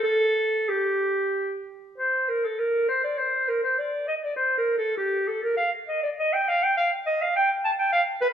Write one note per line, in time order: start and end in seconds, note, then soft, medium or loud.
0.03 0.70 A4 medium
0.68 1.66 G4 medium
1.98 2.30 C5 medium
2.29 2.46 A#4 soft
2.45 2.60 A4 medium
2.59 2.88 A#4 medium
2.88 3.03 C5 medium
3.03 3.19 D5 medium
3.18 3.50 C5 medium
3.48 3.63 A#4 medium
3.63 3.80 C5 medium
3.78 4.07 D5 medium
4.08 4.15 D#5 medium
4.23 4.36 D5 medium
4.36 4.56 C5 medium
4.57 4.77 A#4 medium
4.77 4.97 A4 medium
4.97 5.29 G4 medium
5.27 5.42 A4 medium
5.42 5.56 A#4 medium
5.57 5.70 F5 medium
5.87 6.02 D#5 medium
6.03 6.09 D5 medium
6.19 6.34 D#5 medium
6.33 6.49 G5 medium
6.48 6.64 F5 medium
6.63 6.76 G5 medium
6.77 6.90 F5 medium
7.06 7.23 D#5 medium
7.22 7.35 F5 medium
7.36 7.49 G5 medium
7.65 7.71 A5 medium
7.79 7.91 G5 medium
7.92 8.01 F5 medium
8.21 8.28 B4 medium